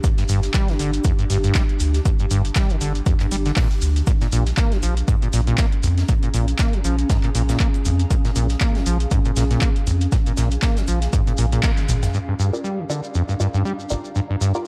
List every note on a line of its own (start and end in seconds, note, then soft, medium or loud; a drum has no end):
0.00 0.08 G2 loud
0.00 4.07 D4 medium
0.00 4.07 G4 medium
0.00 4.07 F5 medium
0.00 4.07 A#5 medium
0.00 kick loud
0.00 closed hi-hat medium
0.00 shaker medium
0.04 shekere medium
0.17 0.24 G2 medium
0.17 snare medium
0.17 closed hi-hat soft
0.17 shekere soft
0.28 0.49 G1 medium
0.28 0.41 G2 loud
0.28 open hi-hat loud
0.28 shekere loud
0.28 shaker medium
0.42 snare soft
0.42 closed hi-hat medium
0.42 shekere soft
0.54 0.70 G3 loud
0.54 kick loud
0.54 snare loud
0.54 clap loud
0.54 closed hi-hat medium
0.54 shekere medium
0.54 shaker medium
0.68 0.74 D3 loud
0.68 snare medium
0.68 closed hi-hat soft
0.79 0.99 G1 medium
0.79 0.91 D3 medium
0.79 open hi-hat loud
0.79 shekere medium
0.79 shaker medium
0.93 closed hi-hat medium
0.93 shekere soft
1.04 1.12 F2 loud
1.04 kick loud
1.04 closed hi-hat medium
1.04 shaker medium
1.04 shekere medium
1.19 1.25 G2 medium
1.19 closed hi-hat soft
1.19 shekere soft
1.29 1.50 G1 medium
1.29 1.38 G2 loud
1.29 snare soft
1.29 open hi-hat loud
1.29 shaker medium
1.29 shekere loud
1.44 1.53 G2 loud
1.44 closed hi-hat medium
1.44 shekere soft
1.55 1.63 G3 loud
1.55 kick loud
1.55 snare loud
1.55 clap loud
1.55 closed hi-hat medium
1.55 shekere medium
1.55 shaker medium
1.69 closed hi-hat soft
1.80 2.00 D2 loud
1.80 open hi-hat loud
1.80 shekere medium
1.80 shaker medium
1.94 snare soft
1.94 closed hi-hat soft
1.94 shekere soft
2.05 2.10 G2 loud
2.05 kick loud
2.05 closed hi-hat medium
2.05 shaker medium
2.05 shekere soft
2.19 2.26 G2 medium
2.19 closed hi-hat soft
2.19 shekere soft
2.31 2.51 G1 medium
2.31 2.42 G2 loud
2.31 open hi-hat loud
2.31 shekere loud
2.31 shaker medium
2.45 closed hi-hat soft
2.45 shekere soft
2.55 2.72 G3 loud
2.55 kick loud
2.55 snare loud
2.55 clap loud
2.55 closed hi-hat medium
2.55 shaker medium
2.55 shekere medium
2.70 2.76 D3 loud
2.70 closed hi-hat soft
2.70 shekere soft
2.81 3.01 G1 medium
2.81 2.93 D3 medium
2.81 open hi-hat loud
2.81 shekere medium
2.81 shaker medium
2.95 closed hi-hat soft
2.95 shekere soft
3.06 3.14 F2 loud
3.06 kick loud
3.06 closed hi-hat medium
3.06 shaker medium
3.06 shekere medium
3.20 3.27 G2 medium
3.20 clap soft
3.20 closed hi-hat soft
3.20 shekere soft
3.31 3.51 G1 loud
3.31 3.36 G3 loud
3.31 open hi-hat loud
3.31 shaker medium
3.31 shekere loud
3.46 3.52 D3 medium
3.46 snare soft
3.46 closed hi-hat soft
3.46 shekere soft
3.56 3.69 A#2 medium
3.56 kick loud
3.56 snare loud
3.56 clap loud
3.56 closed hi-hat medium
3.56 open hi-hat medium
3.56 shekere medium
3.71 closed hi-hat soft
3.71 shekere soft
3.81 4.02 D2 loud
3.81 open hi-hat medium
3.81 shekere medium
3.81 shaker medium
3.96 closed hi-hat soft
3.96 shekere soft
4.07 4.12 A#2 loud
4.07 12.14 C#4 medium
4.07 kick loud
4.07 closed hi-hat medium
4.07 shaker medium
4.07 shekere medium
4.21 4.28 A#2 medium
4.21 snare medium
4.21 closed hi-hat soft
4.21 shekere soft
4.26 12.14 G#4 medium
4.32 4.52 A#1 medium
4.32 4.44 A#2 loud
4.32 open hi-hat loud
4.32 shaker medium
4.32 shekere loud
4.46 snare soft
4.46 closed hi-hat soft
4.46 shekere soft
4.57 4.73 A#3 loud
4.57 kick loud
4.57 snare loud
4.57 clap loud
4.57 closed hi-hat medium
4.57 shekere soft
4.57 shaker medium
4.66 14.67 F5 medium
4.72 4.78 F3 loud
4.72 snare medium
4.72 closed hi-hat soft
4.82 5.03 A#1 medium
4.82 4.95 F3 medium
4.82 open hi-hat medium
4.82 shaker medium
4.82 shekere medium
4.97 closed hi-hat soft
4.97 shekere soft
5.08 5.16 G#2 loud
5.08 kick loud
5.08 closed hi-hat medium
5.08 shekere medium
5.08 shaker medium
5.13 9.26 A#5 medium
5.22 5.28 A#2 medium
5.22 closed hi-hat soft
5.22 shekere soft
5.33 5.53 A#1 loud
5.33 5.41 A#2 loud
5.33 snare soft
5.33 open hi-hat loud
5.33 shaker medium
5.33 shekere loud
5.47 5.57 A#2 loud
5.47 closed hi-hat soft
5.47 shekere soft
5.58 5.66 A#3 loud
5.58 kick loud
5.58 snare loud
5.58 clap loud
5.58 closed hi-hat medium
5.58 shaker medium
5.58 shekere medium
5.72 closed hi-hat soft
5.83 5.88 A#1 loud
5.83 6.04 F2 loud
5.83 open hi-hat medium
5.83 shekere loud
5.83 shaker medium
5.98 snare medium
5.98 closed hi-hat soft
5.98 shekere soft
6.08 6.14 A#2 loud
6.08 kick loud
6.08 closed hi-hat medium
6.08 shaker medium
6.08 shekere medium
6.23 6.29 A#2 medium
6.23 closed hi-hat soft
6.23 shekere soft
6.34 6.54 A#1 medium
6.34 6.46 A#2 loud
6.34 open hi-hat loud
6.34 shekere medium
6.34 shaker medium
6.48 closed hi-hat soft
6.48 shekere soft
6.59 6.75 A#3 loud
6.59 kick loud
6.59 snare loud
6.59 clap loud
6.59 closed hi-hat medium
6.59 shaker medium
6.59 shekere soft
6.73 6.80 F3 loud
6.73 closed hi-hat soft
6.84 7.04 A#1 medium
6.84 6.96 F3 medium
6.84 open hi-hat medium
6.84 shaker medium
6.84 shekere medium
6.99 closed hi-hat soft
6.99 shekere soft
7.09 7.17 G#2 loud
7.09 kick loud
7.09 snare loud
7.09 closed hi-hat medium
7.09 shekere soft
7.09 shaker medium
7.23 7.30 A#2 medium
7.23 clap soft
7.23 closed hi-hat soft
7.23 shekere soft
7.35 7.55 A#1 loud
7.35 7.43 A#2 loud
7.35 open hi-hat loud
7.35 shaker medium
7.35 shekere medium
7.49 7.58 A#2 loud
7.49 snare medium
7.49 closed hi-hat medium
7.49 shekere soft
7.49 shaker medium
7.60 7.68 A#3 loud
7.60 kick loud
7.60 clap loud
7.60 closed hi-hat medium
7.60 shekere soft
7.74 closed hi-hat soft
7.74 shaker medium
7.85 7.90 A#1 medium
7.85 8.05 F2 loud
7.85 open hi-hat medium
7.85 shaker medium
7.85 shekere medium
7.99 closed hi-hat medium
7.99 shekere soft
8.10 8.15 A#2 loud
8.10 kick loud
8.10 closed hi-hat medium
8.10 shekere soft
8.10 shaker medium
8.25 8.31 A#2 medium
8.25 snare medium
8.25 closed hi-hat soft
8.25 shekere soft
8.35 8.56 A#1 loud
8.35 8.47 A#2 loud
8.35 open hi-hat loud
8.35 shaker medium
8.35 shekere medium
8.49 snare soft
8.49 closed hi-hat medium
8.49 shekere soft
8.61 8.77 A#3 loud
8.61 kick loud
8.61 snare loud
8.61 clap loud
8.61 closed hi-hat medium
8.61 shekere medium
8.61 shaker medium
8.75 8.81 F3 loud
8.75 snare medium
8.75 closed hi-hat soft
8.86 9.06 A#1 medium
8.86 8.98 F3 medium
8.86 open hi-hat medium
8.86 shekere medium
8.86 shaker medium
9.00 closed hi-hat medium
9.00 shekere soft
9.09 9.19 G#2 loud
9.09 12.14 G#5 medium
9.09 kick loud
9.09 closed hi-hat medium
9.09 shekere medium
9.09 shaker medium
9.25 9.32 A#2 medium
9.25 closed hi-hat soft
9.25 shekere soft
9.36 9.56 A#1 loud
9.36 9.44 A#2 loud
9.36 snare medium
9.36 open hi-hat loud
9.36 shaker medium
9.36 shekere medium
9.51 9.60 A#2 loud
9.51 snare soft
9.51 closed hi-hat medium
9.51 shekere soft
9.61 9.70 A#3 loud
9.61 kick loud
9.61 clap loud
9.61 closed hi-hat medium
9.61 shaker medium
9.61 shekere soft
9.76 closed hi-hat soft
9.86 9.92 A#1 loud
9.86 10.07 F2 loud
9.86 open hi-hat medium
9.86 shaker medium
9.86 shekere medium
10.01 closed hi-hat medium
10.01 shekere soft
10.12 10.17 A#2 loud
10.12 kick loud
10.12 snare soft
10.12 closed hi-hat medium
10.12 shekere soft
10.12 shaker medium
10.26 10.33 A#2 medium
10.26 closed hi-hat soft
10.26 shekere soft
10.37 10.57 A#1 medium
10.37 10.49 A#2 loud
10.37 snare loud
10.37 open hi-hat loud
10.37 shaker medium
10.37 shekere medium
10.51 closed hi-hat medium
10.51 shekere soft
10.62 10.78 A#3 loud
10.62 kick loud
10.62 snare loud
10.62 clap loud
10.62 closed hi-hat medium
10.62 shaker medium
10.62 shekere soft
10.77 10.83 F3 loud
10.77 snare loud
10.77 closed hi-hat soft
10.77 shekere soft
10.77 shaker medium
10.87 11.08 A#1 medium
10.87 11.00 F3 medium
10.87 open hi-hat medium
10.87 shaker medium
10.87 shekere medium
11.02 snare medium
11.02 closed hi-hat medium
11.02 shekere soft
11.13 11.21 G#2 loud
11.13 kick loud
11.13 closed hi-hat medium
11.13 shekere medium
11.13 shaker medium
11.27 11.33 A#2 medium
11.27 closed hi-hat soft
11.27 shekere soft
11.37 11.58 A#1 loud
11.37 11.46 A#2 loud
11.37 open hi-hat loud
11.37 shekere medium
11.52 11.62 A#2 loud
11.52 closed hi-hat medium
11.52 shekere soft
11.63 11.71 A#3 loud
11.63 kick loud
11.63 snare medium
11.63 clap loud
11.63 closed hi-hat medium
11.63 shekere soft
11.63 shaker medium
11.77 snare soft
11.77 closed hi-hat soft
11.77 high tom medium
11.77 shekere soft
11.89 12.09 G#1 medium
11.89 11.93 A#1 loud
11.89 open hi-hat medium
11.89 mid tom medium
11.89 shaker medium
11.89 shekere medium
12.02 snare loud
12.02 closed hi-hat medium
12.02 mid tom medium
12.02 shekere soft
12.02 shaker medium
12.14 12.19 G2 loud
12.14 14.67 D4 medium
12.14 shekere soft
12.28 12.34 G2 medium
12.39 12.51 G2 medium
12.39 14.67 G4 medium
12.39 shekere medium
12.52 12.62 F4 medium
12.52 12.62 G4 medium
12.52 12.62 A#4 medium
12.52 12.62 D5 medium
12.52 14.67 A#5 medium
12.52 shekere soft
12.64 12.80 G3 medium
12.64 shekere soft
12.78 12.85 D3 loud
12.89 13.01 D3 medium
12.89 13.07 F4 medium
12.89 13.07 G4 medium
12.89 13.07 A#4 medium
12.89 13.07 D5 medium
12.89 shekere medium
13.04 shekere soft
13.14 13.23 F2 loud
13.14 shekere medium
13.29 13.35 G2 medium
13.29 shekere soft
13.40 13.48 G2 loud
13.40 13.57 F4 medium
13.40 13.57 G4 medium
13.40 13.57 A#4 medium
13.40 13.57 D5 medium
13.40 shekere medium
13.54 13.63 G2 loud
13.54 shekere soft
13.65 13.73 G3 loud
13.65 shekere soft
13.80 shekere soft
13.90 13.95 G1 medium
13.90 14.02 F4 medium
13.90 14.02 G4 medium
13.90 14.02 A#4 medium
13.90 14.02 D5 medium
13.90 shekere medium
14.05 shekere soft
14.16 14.20 G2 loud
14.16 shekere soft
14.30 14.36 G2 medium
14.41 14.53 G2 medium
14.41 shekere loud
14.55 14.64 F4 medium
14.55 14.64 G4 medium
14.55 14.64 A#4 medium
14.55 14.64 D5 loud
14.55 shekere soft